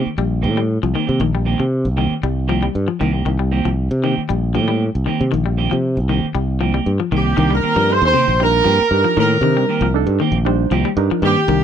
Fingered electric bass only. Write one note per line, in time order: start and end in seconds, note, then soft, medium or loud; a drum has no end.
0.06 muted fingered electric bass stroke soft
0.18 0.45 A#1 medium
0.44 0.77 A2 medium
0.83 0.93 C2 medium
1.09 1.19 C3 medium
1.20 1.54 A#1 loud
1.60 1.87 C3 medium
1.85 2.07 C2 medium
2.11 muted fingered electric bass stroke soft
2.23 2.67 C2 medium
2.75 2.87 G2 medium
3.01 3.23 C2 medium
3.26 3.60 C2 medium
3.65 3.88 C2 medium
3.91 4.13 C3 loud
4.17 muted fingered electric bass stroke soft
4.30 4.56 A#1 medium
4.55 4.89 A2 medium
4.95 5.05 C2 medium
5.21 5.31 C3 medium
5.34 5.67 A#1 loud
5.72 5.98 C3 medium
5.97 6.19 C2 medium
6.24 muted fingered electric bass stroke soft
6.35 6.79 C2 medium
6.86 6.98 G2 medium
7.12 7.34 C2 medium
7.37 7.60 C2 loud
7.76 7.98 G2 medium
8.02 8.13 D#2 loud
8.28 8.60 A#1 medium
8.66 8.78 G2 loud
8.80 muted fingered electric bass stroke soft
8.91 9.03 G2 loud
9.17 9.39 A2 loud
9.41 9.64 C3 loud
9.81 10.03 C2 loud
10.07 10.18 G2 loud
10.32 10.65 A#1 loud
10.71 10.83 C2 loud
10.97 11.09 G2 loud
11.11 muted fingered electric bass stroke soft
11.22 11.34 G2 medium
11.48 11.64 C2 loud